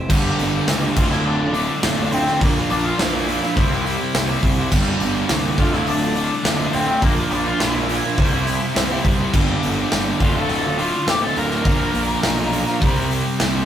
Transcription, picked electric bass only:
0.09 0.29 G1 loud
0.38 0.58 G1 loud
0.67 0.87 C#2 medium
0.97 1.16 D1 medium
1.26 1.65 D1 medium
1.84 2.03 D1 medium
2.12 2.32 D1 medium
2.41 2.61 A#1 loud
2.70 2.90 A#1 loud
2.99 3.38 A#1 loud
3.57 3.96 C2 loud
4.15 4.34 C2 medium
4.43 4.62 C2 loud
4.72 4.91 G1 loud
5.01 5.20 G1 loud
5.30 5.49 C2 medium
5.58 5.78 D1 medium
5.87 6.26 D1 loud
6.45 6.64 D1 medium
6.74 6.93 D1 medium
7.02 7.22 A#1 loud
7.31 7.51 A#1 medium
7.60 7.99 A#1 medium
8.18 8.57 C2 loud
8.75 8.95 C2 medium
9.04 9.24 C2 medium
9.33 9.53 G1 loud
9.63 9.82 G1 loud
9.92 10.11 G1 medium
10.20 10.40 D1 medium
10.49 10.89 D1 loud
11.07 11.27 D1 medium
11.36 11.65 D1 medium
11.65 11.85 A#1 medium
11.94 12.14 A#1 medium
12.23 12.63 B1 medium
12.82 13.21 C2 loud
13.41 13.60 C2 medium

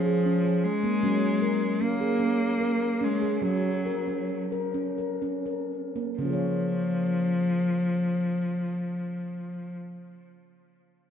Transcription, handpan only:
0.00 0.99 G#3 medium
0.06 0.25 G#4 medium
0.26 0.45 C#4 medium
0.45 0.84 G#4 soft
0.83 1.03 A#3 medium
1.03 3.38 F#3 medium
1.03 1.42 C#4 medium
1.42 1.81 A#4 medium
1.81 2.01 C#4 medium
2.01 2.20 G#4 medium
2.20 2.60 C#4 medium
2.60 3.01 A#4 medium
3.01 3.22 C#4 medium
3.22 3.43 G#4 medium
3.42 6.15 F#3 medium
3.42 3.85 C#4 medium
3.85 4.07 A#4 medium
4.08 4.52 C#4 soft
4.52 4.74 A#4 soft
4.74 4.97 C#4 medium
4.98 5.21 A#4 soft
5.22 5.45 C#4 soft
5.46 5.95 A#4 soft
5.96 6.20 A#3 medium
6.19 9.75 C#3 medium
6.19 9.78 C#4 soft
6.25 9.82 F4 soft
6.29 9.86 G#4 soft
6.29 9.90 C#5 soft

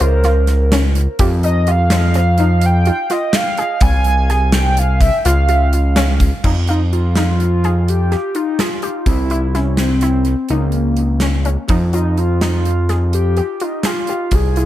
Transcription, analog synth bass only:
0.01 1.08 C#2 medium
1.19 2.91 F2 loud
3.81 5.10 C2 medium
5.25 6.32 C#2 medium
6.44 8.16 F2 loud
9.06 10.35 C2 loud
10.50 11.57 C#2 medium
11.69 13.41 F2 loud
14.32 14.66 C2 medium

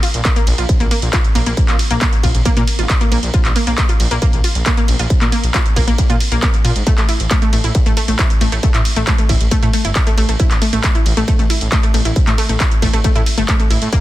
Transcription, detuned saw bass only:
0.14 0.21 A#1 medium
0.47 0.54 A#1 loud
0.58 0.65 A#1 medium
0.80 0.87 A#1 medium
1.02 1.09 A#1 medium
1.35 1.42 A#1 loud
1.46 1.53 A#1 medium
1.69 1.75 A#2 medium
1.91 1.97 A#1 medium
2.23 2.30 A#1 medium
2.35 2.41 A#1 medium
2.57 2.63 A#2 medium
2.79 2.85 G#1 medium
3.12 3.19 A#1 loud
3.23 3.30 A#1 medium
3.45 3.52 A#1 medium
3.67 3.74 A#1 medium
4.00 4.07 A#1 medium
4.11 4.18 A#1 medium
4.33 4.40 A#1 medium
4.55 4.62 A#1 medium
4.88 4.95 A#1 loud
4.99 5.06 A#1 medium
5.21 5.28 A#2 medium
5.44 5.50 A#1 medium
5.76 5.83 A#1 loud
5.88 5.94 A#1 medium
6.10 6.16 A#2 medium
6.32 6.38 A#1 medium
6.65 6.72 A#2 medium
6.76 6.83 G#1 medium
6.98 7.05 A1 medium
7.20 7.27 A1 medium
7.53 7.60 A1 loud
7.64 7.71 A1 medium
7.86 7.93 A1 medium
8.08 8.15 A1 medium
8.41 8.48 A1 loud
8.52 8.59 A1 medium
8.74 8.81 A2 medium
8.96 9.03 A1 medium
9.29 9.36 A1 loud
9.41 9.47 A1 medium
9.63 9.69 A2 medium
9.85 9.91 G1 medium
10.18 10.24 A1 medium
10.29 10.35 A1 medium
10.51 10.58 A1 medium
10.73 10.80 A1 medium
11.06 11.13 A1 medium
11.17 11.24 A1 medium
11.39 11.46 A1 medium
11.61 11.68 A1 medium
11.94 12.01 A1 medium
12.05 12.12 A1 medium
12.27 12.34 A2 medium
12.49 12.56 A1 medium
12.82 12.89 A1 loud
12.94 13.00 A1 medium
13.16 13.22 A2 medium
13.38 13.44 G1 medium
13.70 13.77 A1 medium
13.82 13.88 A2 medium

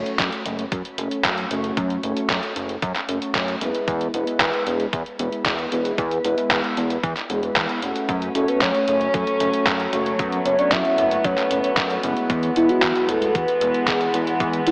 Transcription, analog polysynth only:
0.00 0.42 A3 loud
0.00 0.42 C#4 medium
0.00 0.42 F#4 medium
0.00 0.42 C#5 loud
0.46 0.64 A3 medium
0.46 0.64 C#4 medium
0.46 0.64 F#4 medium
0.98 1.48 A3 medium
0.98 1.48 C#4 medium
0.98 1.48 F#4 medium
0.98 1.48 C#5 medium
1.51 2.00 A3 loud
1.51 2.00 C#4 medium
1.51 2.00 F#4 medium
1.51 2.00 C#5 loud
2.03 2.53 A3 loud
2.03 2.53 C#4 medium
2.03 2.53 F#4 medium
2.03 2.53 C#5 loud
2.56 2.75 A3 medium
2.56 2.75 C#4 medium
2.56 2.75 F#4 medium
2.56 2.75 C#5 medium
3.09 3.58 A3 medium
3.09 3.58 C#4 medium
3.09 3.58 F#4 medium
3.09 3.58 C#5 medium
3.61 4.11 G#3 loud
3.61 4.11 B3 medium
3.61 4.11 E4 medium
3.61 4.11 B4 loud
4.14 4.63 G#3 medium
4.14 4.63 B3 medium
4.14 4.63 E4 medium
4.14 4.63 B4 loud
4.67 4.85 G#3 medium
4.67 4.85 B3 medium
4.67 4.85 E4 medium
4.67 4.85 B4 medium
5.19 5.69 G#3 medium
5.19 5.69 B3 medium
5.19 5.69 E4 medium
5.19 5.69 B4 medium
5.72 6.21 G#3 loud
5.72 6.21 B3 medium
5.72 6.21 E4 medium
5.72 6.21 B4 loud
6.25 6.74 G#3 loud
6.25 6.74 B3 medium
6.25 6.74 E4 medium
6.25 6.74 B4 loud
6.77 6.96 G#3 medium
6.77 6.96 B3 medium
6.77 6.96 E4 medium
6.77 6.96 B4 medium
7.30 7.40 G#3 loud
7.30 7.40 B3 medium
7.30 7.40 E4 medium
7.30 7.40 G#4 loud
7.43 7.79 G#3 medium
7.43 7.79 B3 medium
7.43 7.79 E4 medium
7.43 7.79 B4 medium
7.82 8.32 A3 medium
7.82 8.32 C#4 medium
7.82 8.32 F#4 medium
7.82 8.32 F#5 medium
8.35 8.85 A3 loud
8.35 8.84 C#4 medium
8.35 8.85 F#4 medium
8.35 8.85 C#5 loud
8.88 9.06 A3 medium
8.88 9.06 C#4 medium
8.88 9.06 F#4 medium
8.88 9.06 C#5 medium
9.40 9.90 A3 medium
9.40 9.90 C#4 medium
9.40 9.90 F#4 medium
9.40 9.90 C#5 medium
9.93 10.42 A3 loud
9.93 10.42 C#4 medium
9.93 10.42 F#4 medium
9.93 10.42 C#5 loud
10.45 10.95 A3 loud
10.45 10.95 C#4 medium
10.45 10.95 F#4 medium
10.45 10.95 C#5 loud
10.98 11.17 A3 medium
10.98 11.17 C#4 medium
10.98 11.17 F#4 medium
10.98 11.17 C#5 medium
11.51 12.00 A3 medium
11.51 12.00 C#4 medium
11.51 12.00 F#4 medium
11.51 12.00 C#5 medium
12.03 12.53 G#3 loud
12.03 12.53 B3 medium
12.03 12.53 E4 medium
12.03 12.53 B4 loud
12.56 13.06 G#3 loud
12.56 13.06 B3 medium
12.56 13.06 E4 medium
12.56 13.06 B4 loud
13.09 13.27 G#3 medium
13.09 13.27 B3 medium
13.09 13.27 E4 medium
13.09 13.27 B4 medium
13.61 14.11 G#3 medium
13.61 14.11 B3 medium
13.61 14.11 E4 medium
13.61 14.11 B4 medium
14.14 14.63 G#3 loud
14.14 14.63 B3 medium
14.14 14.63 E4 medium
14.14 14.63 B4 loud
14.67 14.71 G#3 loud
14.67 14.71 B3 medium
14.67 14.71 E4 medium
14.67 14.71 B4 loud

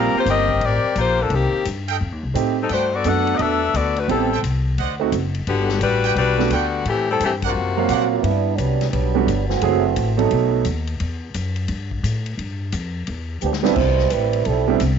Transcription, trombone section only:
7.89 8.10 C3 medium
7.89 8.10 F3 medium
7.89 8.10 A#3 medium
7.89 8.10 F#4 medium
8.12 8.23 F#3 medium
8.12 8.23 A#3 medium
8.12 8.23 C4 medium
8.12 8.23 F4 medium
8.22 8.55 G3 medium
8.22 8.55 B3 medium
8.22 8.55 D4 medium
8.22 8.58 E4 loud
8.56 8.89 F#3 medium
8.56 8.89 G3 medium
8.56 8.89 B3 medium
8.56 8.90 D4 medium
8.90 9.44 F#3 medium
8.90 9.44 G3 medium
8.90 9.44 B3 medium
8.90 9.45 D4 medium
9.48 10.18 E3 medium
9.48 10.18 A3 medium
9.48 10.18 C4 medium
9.48 10.18 F#4 loud
13.43 13.53 F3 medium
13.43 13.53 B3 medium
13.43 13.53 D4 medium
13.43 13.53 G4 medium
13.65 13.76 G3 medium
13.65 13.76 D4 medium
13.65 13.76 F4 medium
13.65 13.76 B4 medium
13.77 14.11 B2 medium
13.77 14.11 G3 medium
13.77 14.10 E4 medium
13.77 14.12 C5 loud
14.12 14.45 G3 medium
14.12 14.45 C4 medium
14.12 14.46 E4 medium
14.12 14.46 B4 loud
14.46 14.80 G3 medium
14.46 14.81 C4 medium
14.46 14.81 E4 medium
14.46 14.81 A4 medium

